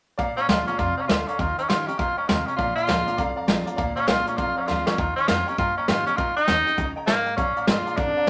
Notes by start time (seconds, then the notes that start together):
0.18 A#1 A#2 D5 F5 A#5, kick, closed hi-hat
0.36 C#4 D5 F5 A#5, closed hi-hat
0.48 D2 F3 G#3 D4 F4 D5 F5 A#5, snare, closed hi-hat
0.67 C#4 D4 F4 D5 F5 A#5, closed hi-hat
0.78 F2 C3 F4 D5 F5 A#5, kick, closed hi-hat
0.97 C#4 D5 F5 A#5
1.08 D2 D3 F4 D5 F5 A#5, snare, closed hi-hat
1.28 C#4 D5 F5 A#5, muted upright bass stroke, closed hi-hat
1.38 D#2 D#3 F4 D#5 G5 A#5, kick, closed hi-hat
1.57 C#4 D#5 G5 A#5, muted upright bass stroke, closed hi-hat
1.68 G2 D#3 G3 C#4 F4 G4 D#5 G5 C6, snare, closed hi-hat
1.87 C#4 G4 D#5 G5 A#5, muted upright bass stroke, closed hi-hat
1.98 G2 A#2 F4 D#5 G5 A#5, kick, closed hi-hat
2.17 C#4 D#5 G5 A#5, muted upright bass stroke
2.28 D#2 C3 F4 D#5 G5 A#5, snare, closed hi-hat
2.45 C#4 D#5 G5 A#5, closed hi-hat
2.56 A#1 A#2 F4 D5 F5 A#5, kick, closed hi-hat
2.75 F4 D5 F5 A#5, closed hi-hat
2.87 D2 F3 G#3 D4 F4 D5 F5 A#5, snare, closed hi-hat
3.06 D4 F4 D5 F5 A#5, closed hi-hat
3.17 C2 F2 D5 F5 A#5, kick, closed hi-hat
3.36 D5 F5 A#5, muted upright bass stroke
3.47 A#1 F3 G#3 D4 F4 D5 F5 A#5, snare, closed hi-hat
3.66 D4 F4 D5 F5 A#5, closed hi-hat
3.76 D2 A#2 D5 F5 A#5, kick, closed hi-hat
3.96 C#4 D5 F5 A#5, muted upright bass stroke, closed hi-hat
4.07 C2 F3 G#3 D4 F4 F5 A#5, snare, closed hi-hat
4.26 C#4 D4 F4 D5 F5 A#5, closed hi-hat
4.37 A#1 F2 F4 D5 F5 A#5, kick, closed hi-hat
4.56 C#4 D5 F5 A#5
4.67 D2 F3 G#3 D4 F4 D5 F5 A#5, snare
4.86 C#4 D4 F4 D5 F5 A#5, snare
4.97 D#2 D#3 F4 D#5 G5 A#5, kick, closed hi-hat
5.16 C#4 D#5 G5 C6, closed hi-hat
5.28 F2 D#3 G3 C#4 F4 G4 D#5 G5 A#5, snare, closed hi-hat
5.46 C#4 G4 D#5 G5 A#5, closed hi-hat
5.51 C#4
5.58 G2 A#2 F4 D#5 G5 A#5, kick, closed hi-hat
5.77 C#4 D#5 G5 A#5
5.88 G#2 D#3 G3 C#4 F4 G4 D#5 G5 A#5, snare, closed hi-hat
6.06 C#4 G4 D#5 G5 A#5, closed hi-hat
6.17 A#2 D#3 F4 D#5 G5 A#5, kick, closed hi-hat
6.36 D#4 D#5 G5 A#5, muted upright bass stroke, closed hi-hat
6.47 D#2 D#3 G3 C#4 G4 D#5 G5 A#5, snare, closed hi-hat
6.66 C#4 G4 D#5 G5 A#5, closed hi-hat
6.77 C#2 C#3 D#5 G5 A#5, kick, closed hi-hat
6.96 D#5 G5 A#5, muted upright bass stroke
7.06 C2 G#2 A#3 D#5 G5, snare, closed hi-hat
7.25 D#5 G5 A#5, closed hi-hat
7.36 A#1 A#2 C#4 D5 F5 A#5, kick, closed hi-hat
7.56 D5 F5 A#5, muted upright bass stroke, closed hi-hat
7.67 G1 F3 G#3 D4 F4 D5 A#5, snare, closed hi-hat
7.86 D5 F5 A#5, closed hi-hat
7.97 G#1 F2 D4 D5 F5 A#5, kick, closed hi-hat
8.17 D5 F5 A#5